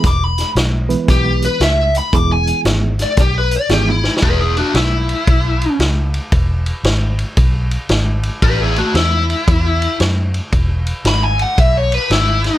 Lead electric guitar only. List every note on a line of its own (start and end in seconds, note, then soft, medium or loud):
0.06 0.24 D6 medium
0.24 0.50 B5 medium
1.10 1.43 G4 medium
1.45 1.61 B4 medium
1.62 1.95 E5 medium
1.98 2.13 B5 medium
2.15 2.31 D6 medium
2.32 2.59 G#5 medium
3.02 3.18 D5 medium
3.21 3.36 G4 medium
3.38 3.53 B4 medium
3.56 3.71 D5 medium
3.73 3.88 G4 medium
3.90 4.22 E4 medium
4.23 4.39 G#4 medium
4.23 4.40 B4 medium
4.39 4.56 E4 medium
4.39 4.57 G#4 medium
4.57 4.73 D4 medium
4.57 4.76 F#4 medium
4.76 5.77 E4 medium
8.43 8.60 G4 medium
8.43 8.61 B4 loud
8.60 8.77 E4 medium
8.60 8.77 G#4 medium
8.78 8.94 A3 medium
8.78 8.95 F#4 medium
8.96 9.97 E4 medium
11.07 11.23 B5 loud
11.24 11.40 G#5 medium
11.42 11.60 F#5 medium
11.60 11.77 E5 medium
11.77 11.94 C#5 medium
11.94 12.10 B4 medium
12.12 12.58 E4 medium